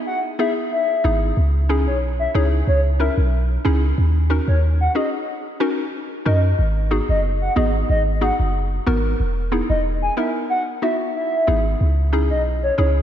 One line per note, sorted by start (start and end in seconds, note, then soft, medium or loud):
0.06 0.20 F#5 medium
0.39 0.53 B3 medium
0.39 0.53 D#4 medium
0.39 0.53 E4 medium
0.39 0.53 G#4 medium
0.39 0.53 E5 medium
0.72 1.19 E5 medium
1.04 1.32 G#1 medium
1.04 1.18 B3 medium
1.04 1.18 D#4 medium
1.04 1.18 E4 medium
1.04 1.18 G#4 medium
1.37 1.88 C#2 loud
1.69 1.83 C#4 medium
1.69 1.83 D#4 medium
1.69 1.83 E4 medium
1.69 1.83 G#4 medium
1.87 2.27 B1 medium
1.87 1.99 C#5 medium
2.19 2.31 E5 medium
2.34 2.62 C#2 medium
2.34 2.48 C#4 medium
2.34 2.49 D#4 medium
2.34 2.49 E4 medium
2.34 2.49 G#4 medium
2.34 2.48 C#5 medium
2.67 3.09 C#2 medium
2.67 2.81 C#5 medium
3.00 3.14 C#4 medium
3.00 3.14 D#4 medium
3.00 3.14 E4 medium
3.00 3.14 A#4 medium
3.00 3.13 E5 medium
3.17 3.57 B1 medium
3.65 3.92 C#2 medium
3.65 3.79 C#4 medium
3.65 3.79 D#4 medium
3.65 3.79 E4 medium
3.65 3.79 G#4 loud
3.98 4.39 D#2 loud
4.30 4.44 C#4 medium
4.30 4.44 D#4 medium
4.30 4.44 F#4 medium
4.30 4.44 A#4 medium
4.48 4.88 D#2 loud
4.48 4.59 C#5 medium
4.81 4.92 F#5 medium
4.95 5.09 C#4 medium
4.95 5.09 D#4 medium
4.95 5.09 F#4 medium
4.95 5.09 G#4 medium
4.95 5.09 D#5 medium
5.60 5.74 C#4 medium
5.60 5.74 D#4 medium
5.60 5.74 F#4 medium
5.60 5.75 A#4 loud
6.25 6.53 F#2 medium
6.25 6.40 C#4 medium
6.25 6.40 D#4 medium
6.25 6.40 F#4 medium
6.25 6.40 A#4 medium
6.25 6.39 D#5 medium
6.59 7.00 G#1 loud
6.91 7.05 B3 medium
6.91 7.05 D#4 medium
6.91 7.05 F#4 medium
6.91 7.05 G#4 medium
7.09 7.49 F#1 medium
7.09 7.21 D#5 medium
7.42 7.53 F#5 medium
7.56 7.84 G#1 medium
7.56 7.70 B3 medium
7.56 7.70 D#4 medium
7.56 7.70 F#4 medium
7.56 7.70 G#4 medium
7.56 7.70 D#5 medium
7.89 8.31 G#1 medium
7.89 8.02 D#5 medium
8.21 8.35 B3 medium
8.21 8.35 D#4 medium
8.21 8.35 F#4 medium
8.21 8.36 G#4 medium
8.21 8.35 F#5 medium
8.39 8.79 F#1 medium
8.86 9.14 G#1 loud
8.86 9.00 B3 medium
8.86 9.01 D#4 medium
8.86 9.01 F#4 medium
8.86 9.01 A#4 medium
9.20 9.61 E1 loud
9.52 9.66 B3 medium
9.52 9.66 D#4 medium
9.52 9.66 E4 medium
9.52 9.66 G#4 medium
9.69 10.09 E1 medium
9.69 9.81 D#5 medium
10.02 10.14 G#5 medium
10.17 10.31 B3 medium
10.17 10.31 D#4 medium
10.17 10.31 E4 medium
10.17 10.31 A#4 medium
10.17 10.30 E5 medium
10.50 10.63 F#5 medium
10.82 10.96 B3 medium
10.82 10.96 D#4 medium
10.82 10.96 E4 medium
10.82 10.96 F#4 medium
10.82 10.96 E5 medium
11.15 11.62 E5 medium
11.47 11.75 G#1 medium
11.47 11.61 B3 medium
11.47 11.61 D#4 medium
11.47 11.62 E4 medium
11.47 11.62 G#4 medium
11.81 12.32 C#2 loud
12.13 12.27 C#4 medium
12.13 12.27 D#4 medium
12.13 12.27 E4 medium
12.13 12.27 G#4 medium
12.30 12.70 B1 medium
12.30 12.42 D#5 medium
12.63 12.75 C#5 medium
12.78 13.02 C#2 medium
12.78 12.92 C#4 medium
12.78 12.92 D#4 medium
12.78 12.92 E4 medium
12.78 12.92 G#4 medium
12.78 12.91 C#5 medium